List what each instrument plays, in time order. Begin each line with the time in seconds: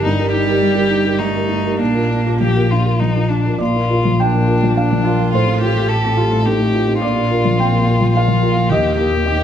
Already playing: double bass G1
0.04 felt piano G2, cello G3, violin D#4
0.19 felt piano G4 A#4
0.32 felt piano D#4, violin G4
0.47 felt piano G4 A#4
0.62 felt piano G3
0.75 felt piano G4 A#4
0.90 felt piano D#4
1.05 felt piano G4 A#4
1.19 felt piano G3, cello A3, violin D#4
1.35 felt piano G4 A#4
1.49 felt piano D#4
1.64 felt piano G4 A#4
1.78 double bass A#1, felt piano A#2, cello A#3, violin D4
1.95 felt piano F4 A#4
2.11 felt piano D4
2.26 felt piano F4 A#4
2.40 felt piano F3, violin G4
2.56 felt piano F4 A#4
2.71 felt piano D4, violin F4
2.85 felt piano F4 A#4
3.00 felt piano F3, violin D#4
3.16 felt piano F4 A#4
3.29 violin D4, felt piano D4
3.46 felt piano F4 A#4
3.58 double bass A#1, felt piano A#2 D5
3.63 violin F4
3.76 felt piano A#3
3.90 felt piano F4 A#4
4.05 felt piano F3
4.18 cello A#3, violin D4, felt piano G5
4.35 felt piano A#3
4.48 felt piano F4 A#4
4.63 felt piano F3
4.76 felt piano A#3 F5, cello D4, violin D4
4.92 felt piano F3
5.05 cello F4, felt piano F4 A#4
5.19 felt piano A#3
5.32 double bass A1, felt piano A2 C5, violin F4
5.47 felt piano C4
5.61 felt piano F4 G4, violin G4
5.75 felt piano A3
5.88 cello G4, violin A4
6.05 felt piano C4
6.17 felt piano F4 G4, cello F4
6.32 felt piano A3
6.43 felt piano C4, cello D#4, violin G4
6.60 felt piano A3
6.74 felt piano F4 G4
6.88 felt piano C4
6.99 double bass A#1, felt piano A#2 D5, cello D4, violin F4
7.16 felt piano A#3
7.31 felt piano F4 A#4
7.45 felt piano F3
7.58 cello C4, felt piano G5
7.72 felt piano A#3
7.88 cello A#3, felt piano F4 A#4
8.01 felt piano F3
8.13 felt piano A#3, violin F4
8.17 felt piano F5
8.28 felt piano F3
8.43 felt piano F4 A#4
8.56 felt piano A#3
8.69 felt piano D#2 D#5, double bass D#2, violin G4
8.83 felt piano A#3
8.97 violin G4, felt piano G4 A#4
9.11 felt piano A#2
9.27 cello G4
9.38 felt piano A#3